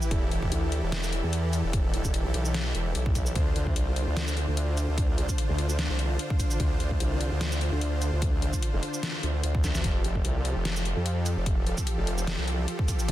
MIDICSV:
0, 0, Header, 1, 4, 480
1, 0, Start_track
1, 0, Tempo, 405405
1, 133, Time_signature, 4, 2, 24, 8
1, 15531, End_track
2, 0, Start_track
2, 0, Title_t, "Supersaw synth"
2, 0, Program_c, 0, 81
2, 0, Note_on_c, 0, 52, 80
2, 0, Note_on_c, 0, 64, 73
2, 0, Note_on_c, 0, 67, 73
2, 131, Note_on_c, 0, 69, 88
2, 3925, Note_off_c, 0, 52, 0
2, 3925, Note_off_c, 0, 64, 0
2, 3925, Note_off_c, 0, 67, 0
2, 3933, Note_off_c, 0, 69, 0
2, 3972, Note_on_c, 0, 62, 72
2, 3972, Note_on_c, 0, 72, 87
2, 3973, Note_on_c, 0, 50, 79
2, 3973, Note_on_c, 0, 65, 73
2, 11605, Note_off_c, 0, 50, 0
2, 11605, Note_off_c, 0, 62, 0
2, 11605, Note_off_c, 0, 65, 0
2, 11605, Note_off_c, 0, 72, 0
2, 11651, Note_on_c, 0, 67, 71
2, 11652, Note_on_c, 0, 53, 80
2, 11652, Note_on_c, 0, 65, 73
2, 11652, Note_on_c, 0, 69, 89
2, 15531, Note_off_c, 0, 53, 0
2, 15531, Note_off_c, 0, 65, 0
2, 15531, Note_off_c, 0, 67, 0
2, 15531, Note_off_c, 0, 69, 0
2, 15531, End_track
3, 0, Start_track
3, 0, Title_t, "Wobble bass"
3, 0, Program_c, 1, 39
3, 132, Note_on_c, 1, 28, 97
3, 355, Note_off_c, 1, 28, 0
3, 371, Note_on_c, 1, 28, 98
3, 594, Note_off_c, 1, 28, 0
3, 611, Note_on_c, 1, 38, 98
3, 962, Note_off_c, 1, 38, 0
3, 983, Note_on_c, 1, 28, 96
3, 1442, Note_off_c, 1, 28, 0
3, 1463, Note_on_c, 1, 40, 99
3, 1922, Note_off_c, 1, 40, 0
3, 1943, Note_on_c, 1, 28, 99
3, 2402, Note_off_c, 1, 28, 0
3, 2423, Note_on_c, 1, 28, 101
3, 2642, Note_off_c, 1, 28, 0
3, 2664, Note_on_c, 1, 35, 98
3, 2755, Note_off_c, 1, 35, 0
3, 2772, Note_on_c, 1, 35, 99
3, 3235, Note_off_c, 1, 35, 0
3, 3252, Note_on_c, 1, 28, 98
3, 3475, Note_off_c, 1, 28, 0
3, 3492, Note_on_c, 1, 35, 98
3, 3955, Note_off_c, 1, 35, 0
3, 3972, Note_on_c, 1, 38, 100
3, 4195, Note_off_c, 1, 38, 0
3, 4212, Note_on_c, 1, 38, 98
3, 4435, Note_off_c, 1, 38, 0
3, 4452, Note_on_c, 1, 36, 99
3, 4802, Note_off_c, 1, 36, 0
3, 4823, Note_on_c, 1, 38, 97
3, 5282, Note_off_c, 1, 38, 0
3, 5303, Note_on_c, 1, 38, 96
3, 5762, Note_off_c, 1, 38, 0
3, 5783, Note_on_c, 1, 38, 97
3, 6242, Note_off_c, 1, 38, 0
3, 6503, Note_on_c, 1, 38, 101
3, 6962, Note_off_c, 1, 38, 0
3, 6983, Note_on_c, 1, 36, 100
3, 7314, Note_off_c, 1, 36, 0
3, 7812, Note_on_c, 1, 38, 100
3, 8034, Note_off_c, 1, 38, 0
3, 8051, Note_on_c, 1, 38, 100
3, 8274, Note_off_c, 1, 38, 0
3, 8292, Note_on_c, 1, 36, 101
3, 8642, Note_off_c, 1, 36, 0
3, 8663, Note_on_c, 1, 38, 97
3, 9122, Note_off_c, 1, 38, 0
3, 9143, Note_on_c, 1, 38, 97
3, 9602, Note_off_c, 1, 38, 0
3, 9623, Note_on_c, 1, 38, 96
3, 10082, Note_off_c, 1, 38, 0
3, 10343, Note_on_c, 1, 29, 101
3, 10435, Note_off_c, 1, 29, 0
3, 10932, Note_on_c, 1, 38, 95
3, 11154, Note_off_c, 1, 38, 0
3, 11172, Note_on_c, 1, 38, 98
3, 11394, Note_off_c, 1, 38, 0
3, 11412, Note_on_c, 1, 38, 98
3, 11634, Note_off_c, 1, 38, 0
3, 11652, Note_on_c, 1, 29, 97
3, 11875, Note_off_c, 1, 29, 0
3, 11892, Note_on_c, 1, 29, 99
3, 12114, Note_off_c, 1, 29, 0
3, 12132, Note_on_c, 1, 36, 100
3, 12482, Note_off_c, 1, 36, 0
3, 12502, Note_on_c, 1, 29, 96
3, 12962, Note_off_c, 1, 29, 0
3, 12982, Note_on_c, 1, 41, 97
3, 13442, Note_off_c, 1, 41, 0
3, 13463, Note_on_c, 1, 29, 99
3, 13922, Note_off_c, 1, 29, 0
3, 14183, Note_on_c, 1, 29, 99
3, 14642, Note_off_c, 1, 29, 0
3, 14663, Note_on_c, 1, 36, 100
3, 14995, Note_off_c, 1, 36, 0
3, 15492, Note_on_c, 1, 29, 96
3, 15531, Note_off_c, 1, 29, 0
3, 15531, End_track
4, 0, Start_track
4, 0, Title_t, "Drums"
4, 24, Note_on_c, 9, 82, 65
4, 132, Note_on_c, 9, 36, 127
4, 132, Note_on_c, 9, 42, 83
4, 142, Note_off_c, 9, 82, 0
4, 250, Note_off_c, 9, 36, 0
4, 250, Note_off_c, 9, 42, 0
4, 373, Note_on_c, 9, 42, 55
4, 491, Note_off_c, 9, 42, 0
4, 503, Note_on_c, 9, 36, 64
4, 613, Note_on_c, 9, 42, 83
4, 621, Note_off_c, 9, 36, 0
4, 731, Note_off_c, 9, 42, 0
4, 853, Note_on_c, 9, 42, 56
4, 971, Note_off_c, 9, 42, 0
4, 1092, Note_on_c, 9, 38, 127
4, 1092, Note_on_c, 9, 42, 82
4, 1211, Note_off_c, 9, 38, 0
4, 1211, Note_off_c, 9, 42, 0
4, 1224, Note_on_c, 9, 82, 63
4, 1333, Note_on_c, 9, 42, 56
4, 1343, Note_off_c, 9, 82, 0
4, 1451, Note_off_c, 9, 42, 0
4, 1573, Note_on_c, 9, 42, 82
4, 1691, Note_off_c, 9, 42, 0
4, 1813, Note_on_c, 9, 42, 55
4, 1813, Note_on_c, 9, 82, 54
4, 1931, Note_off_c, 9, 42, 0
4, 1931, Note_off_c, 9, 82, 0
4, 2052, Note_on_c, 9, 36, 125
4, 2052, Note_on_c, 9, 42, 77
4, 2171, Note_off_c, 9, 36, 0
4, 2171, Note_off_c, 9, 42, 0
4, 2293, Note_on_c, 9, 42, 53
4, 2411, Note_off_c, 9, 42, 0
4, 2423, Note_on_c, 9, 36, 63
4, 2424, Note_on_c, 9, 82, 58
4, 2532, Note_on_c, 9, 42, 78
4, 2542, Note_off_c, 9, 36, 0
4, 2542, Note_off_c, 9, 82, 0
4, 2651, Note_off_c, 9, 42, 0
4, 2773, Note_on_c, 9, 42, 52
4, 2891, Note_off_c, 9, 42, 0
4, 2903, Note_on_c, 9, 82, 58
4, 3012, Note_on_c, 9, 38, 123
4, 3012, Note_on_c, 9, 42, 78
4, 3022, Note_off_c, 9, 82, 0
4, 3131, Note_off_c, 9, 38, 0
4, 3131, Note_off_c, 9, 42, 0
4, 3252, Note_on_c, 9, 42, 52
4, 3371, Note_off_c, 9, 42, 0
4, 3493, Note_on_c, 9, 42, 79
4, 3611, Note_off_c, 9, 42, 0
4, 3623, Note_on_c, 9, 36, 108
4, 3732, Note_off_c, 9, 36, 0
4, 3732, Note_on_c, 9, 36, 64
4, 3732, Note_on_c, 9, 42, 53
4, 3732, Note_on_c, 9, 82, 51
4, 3850, Note_off_c, 9, 36, 0
4, 3851, Note_off_c, 9, 42, 0
4, 3851, Note_off_c, 9, 82, 0
4, 3864, Note_on_c, 9, 82, 60
4, 3972, Note_on_c, 9, 36, 119
4, 3973, Note_on_c, 9, 42, 75
4, 3982, Note_off_c, 9, 82, 0
4, 4090, Note_off_c, 9, 36, 0
4, 4091, Note_off_c, 9, 42, 0
4, 4213, Note_on_c, 9, 42, 51
4, 4331, Note_off_c, 9, 42, 0
4, 4343, Note_on_c, 9, 36, 61
4, 4452, Note_on_c, 9, 42, 78
4, 4462, Note_off_c, 9, 36, 0
4, 4571, Note_off_c, 9, 42, 0
4, 4693, Note_on_c, 9, 42, 53
4, 4811, Note_off_c, 9, 42, 0
4, 4933, Note_on_c, 9, 38, 119
4, 4933, Note_on_c, 9, 42, 75
4, 5051, Note_off_c, 9, 38, 0
4, 5051, Note_off_c, 9, 42, 0
4, 5064, Note_on_c, 9, 82, 61
4, 5173, Note_on_c, 9, 42, 52
4, 5182, Note_off_c, 9, 82, 0
4, 5291, Note_off_c, 9, 42, 0
4, 5413, Note_on_c, 9, 42, 78
4, 5531, Note_off_c, 9, 42, 0
4, 5653, Note_on_c, 9, 42, 52
4, 5653, Note_on_c, 9, 82, 51
4, 5771, Note_off_c, 9, 42, 0
4, 5771, Note_off_c, 9, 82, 0
4, 5892, Note_on_c, 9, 36, 118
4, 5893, Note_on_c, 9, 42, 77
4, 6010, Note_off_c, 9, 36, 0
4, 6011, Note_off_c, 9, 42, 0
4, 6133, Note_on_c, 9, 42, 51
4, 6251, Note_off_c, 9, 42, 0
4, 6263, Note_on_c, 9, 36, 59
4, 6264, Note_on_c, 9, 82, 61
4, 6373, Note_on_c, 9, 42, 77
4, 6381, Note_off_c, 9, 36, 0
4, 6382, Note_off_c, 9, 82, 0
4, 6491, Note_off_c, 9, 42, 0
4, 6613, Note_on_c, 9, 42, 51
4, 6731, Note_off_c, 9, 42, 0
4, 6744, Note_on_c, 9, 82, 61
4, 6853, Note_on_c, 9, 38, 118
4, 6853, Note_on_c, 9, 42, 76
4, 6862, Note_off_c, 9, 82, 0
4, 6971, Note_off_c, 9, 38, 0
4, 6971, Note_off_c, 9, 42, 0
4, 7092, Note_on_c, 9, 42, 51
4, 7211, Note_off_c, 9, 42, 0
4, 7332, Note_on_c, 9, 42, 77
4, 7451, Note_off_c, 9, 42, 0
4, 7463, Note_on_c, 9, 36, 102
4, 7572, Note_off_c, 9, 36, 0
4, 7572, Note_on_c, 9, 36, 60
4, 7572, Note_on_c, 9, 42, 52
4, 7572, Note_on_c, 9, 82, 55
4, 7690, Note_off_c, 9, 36, 0
4, 7691, Note_off_c, 9, 42, 0
4, 7691, Note_off_c, 9, 82, 0
4, 7704, Note_on_c, 9, 82, 65
4, 7812, Note_on_c, 9, 36, 113
4, 7812, Note_on_c, 9, 42, 78
4, 7822, Note_off_c, 9, 82, 0
4, 7930, Note_off_c, 9, 36, 0
4, 7931, Note_off_c, 9, 42, 0
4, 8052, Note_on_c, 9, 42, 52
4, 8170, Note_off_c, 9, 42, 0
4, 8183, Note_on_c, 9, 36, 58
4, 8292, Note_on_c, 9, 42, 77
4, 8301, Note_off_c, 9, 36, 0
4, 8410, Note_off_c, 9, 42, 0
4, 8532, Note_on_c, 9, 42, 53
4, 8650, Note_off_c, 9, 42, 0
4, 8772, Note_on_c, 9, 38, 110
4, 8772, Note_on_c, 9, 42, 78
4, 8890, Note_off_c, 9, 38, 0
4, 8890, Note_off_c, 9, 42, 0
4, 8903, Note_on_c, 9, 82, 67
4, 9012, Note_on_c, 9, 42, 52
4, 9021, Note_off_c, 9, 82, 0
4, 9131, Note_off_c, 9, 42, 0
4, 9252, Note_on_c, 9, 42, 78
4, 9371, Note_off_c, 9, 42, 0
4, 9492, Note_on_c, 9, 42, 53
4, 9492, Note_on_c, 9, 82, 56
4, 9610, Note_off_c, 9, 42, 0
4, 9610, Note_off_c, 9, 82, 0
4, 9732, Note_on_c, 9, 36, 116
4, 9732, Note_on_c, 9, 42, 81
4, 9850, Note_off_c, 9, 36, 0
4, 9850, Note_off_c, 9, 42, 0
4, 9972, Note_on_c, 9, 42, 56
4, 10090, Note_off_c, 9, 42, 0
4, 10103, Note_on_c, 9, 36, 59
4, 10103, Note_on_c, 9, 82, 65
4, 10212, Note_on_c, 9, 42, 82
4, 10221, Note_off_c, 9, 36, 0
4, 10221, Note_off_c, 9, 82, 0
4, 10330, Note_off_c, 9, 42, 0
4, 10452, Note_on_c, 9, 42, 54
4, 10570, Note_off_c, 9, 42, 0
4, 10583, Note_on_c, 9, 82, 67
4, 10691, Note_on_c, 9, 38, 116
4, 10691, Note_on_c, 9, 42, 82
4, 10701, Note_off_c, 9, 82, 0
4, 10810, Note_off_c, 9, 38, 0
4, 10810, Note_off_c, 9, 42, 0
4, 10932, Note_on_c, 9, 42, 55
4, 11050, Note_off_c, 9, 42, 0
4, 11171, Note_on_c, 9, 42, 83
4, 11290, Note_off_c, 9, 42, 0
4, 11303, Note_on_c, 9, 36, 102
4, 11412, Note_off_c, 9, 36, 0
4, 11412, Note_on_c, 9, 36, 60
4, 11412, Note_on_c, 9, 38, 63
4, 11412, Note_on_c, 9, 42, 53
4, 11412, Note_on_c, 9, 82, 56
4, 11530, Note_off_c, 9, 36, 0
4, 11530, Note_off_c, 9, 38, 0
4, 11530, Note_off_c, 9, 42, 0
4, 11530, Note_off_c, 9, 82, 0
4, 11543, Note_on_c, 9, 38, 76
4, 11543, Note_on_c, 9, 82, 66
4, 11652, Note_on_c, 9, 36, 123
4, 11652, Note_on_c, 9, 42, 84
4, 11661, Note_off_c, 9, 38, 0
4, 11661, Note_off_c, 9, 82, 0
4, 11770, Note_off_c, 9, 36, 0
4, 11770, Note_off_c, 9, 42, 0
4, 11892, Note_on_c, 9, 42, 55
4, 12011, Note_off_c, 9, 42, 0
4, 12023, Note_on_c, 9, 36, 63
4, 12132, Note_on_c, 9, 42, 82
4, 12141, Note_off_c, 9, 36, 0
4, 12250, Note_off_c, 9, 42, 0
4, 12372, Note_on_c, 9, 42, 57
4, 12491, Note_off_c, 9, 42, 0
4, 12612, Note_on_c, 9, 38, 120
4, 12612, Note_on_c, 9, 42, 83
4, 12730, Note_off_c, 9, 38, 0
4, 12730, Note_off_c, 9, 42, 0
4, 12743, Note_on_c, 9, 82, 69
4, 12852, Note_on_c, 9, 42, 57
4, 12861, Note_off_c, 9, 82, 0
4, 12970, Note_off_c, 9, 42, 0
4, 13091, Note_on_c, 9, 42, 85
4, 13210, Note_off_c, 9, 42, 0
4, 13332, Note_on_c, 9, 42, 55
4, 13332, Note_on_c, 9, 82, 56
4, 13450, Note_off_c, 9, 42, 0
4, 13450, Note_off_c, 9, 82, 0
4, 13572, Note_on_c, 9, 36, 127
4, 13572, Note_on_c, 9, 42, 83
4, 13690, Note_off_c, 9, 36, 0
4, 13690, Note_off_c, 9, 42, 0
4, 13812, Note_on_c, 9, 42, 56
4, 13930, Note_off_c, 9, 42, 0
4, 13943, Note_on_c, 9, 36, 64
4, 13943, Note_on_c, 9, 82, 62
4, 14052, Note_on_c, 9, 42, 85
4, 14061, Note_off_c, 9, 36, 0
4, 14061, Note_off_c, 9, 82, 0
4, 14171, Note_off_c, 9, 42, 0
4, 14292, Note_on_c, 9, 42, 56
4, 14411, Note_off_c, 9, 42, 0
4, 14424, Note_on_c, 9, 82, 62
4, 14532, Note_on_c, 9, 38, 123
4, 14532, Note_on_c, 9, 42, 84
4, 14542, Note_off_c, 9, 82, 0
4, 14651, Note_off_c, 9, 38, 0
4, 14651, Note_off_c, 9, 42, 0
4, 14773, Note_on_c, 9, 42, 57
4, 14891, Note_off_c, 9, 42, 0
4, 15013, Note_on_c, 9, 42, 88
4, 15131, Note_off_c, 9, 42, 0
4, 15143, Note_on_c, 9, 36, 110
4, 15252, Note_off_c, 9, 36, 0
4, 15252, Note_on_c, 9, 36, 67
4, 15253, Note_on_c, 9, 42, 58
4, 15253, Note_on_c, 9, 82, 55
4, 15370, Note_off_c, 9, 36, 0
4, 15371, Note_off_c, 9, 42, 0
4, 15371, Note_off_c, 9, 82, 0
4, 15384, Note_on_c, 9, 82, 64
4, 15492, Note_on_c, 9, 36, 126
4, 15493, Note_on_c, 9, 42, 83
4, 15503, Note_off_c, 9, 82, 0
4, 15531, Note_off_c, 9, 36, 0
4, 15531, Note_off_c, 9, 42, 0
4, 15531, End_track
0, 0, End_of_file